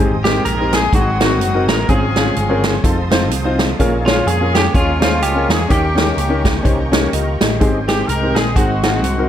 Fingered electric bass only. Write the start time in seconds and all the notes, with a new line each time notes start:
Already playing: G#1
0.45 A#1
0.93 G#1
1.40 F#1
1.68 A1
1.89 G#1
2.37 G1
2.84 F1
3.31 C2
3.79 A#1
4.26 F2
4.74 D#2
5.22 C#2
5.49 E2
5.70 D#2
6.17 C#2
6.65 C2
7.13 C#2
7.40 A1
7.61 G#1
8.08 C2
8.36 A#1
8.56 G#1
9.03 C2